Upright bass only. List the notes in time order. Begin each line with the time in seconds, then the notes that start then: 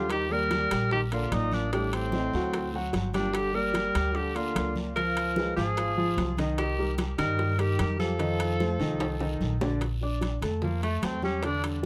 Already playing: D#2
0.71 A#1
1.32 A1
2.33 D2
2.93 G1
3.95 D2
4.56 C#2
5.57 G#1
6.17 C2
7.18 G2
7.79 F2
8.79 C2
9.41 A#1
10.42 F2
11.03 E2